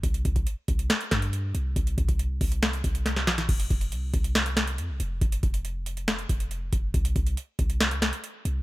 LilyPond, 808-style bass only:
\new Staff \with { instrumentName = "808-style bass" } { \clef bass \time 4/4 \key c \phrygian \tempo 4 = 139 c,8 c,8 r8 c,8 r8 g,4 c,8 | c,8 c,4 c,4 c,4 bes,,8 | f,,8 f,,8 c,8 c,4. f,16 c,16 f,,8 | f,,8 f,,2 f,,4 f,,8 |
c,8 c,8 r8 c,8. des,16 c,16 r8. c,8 | }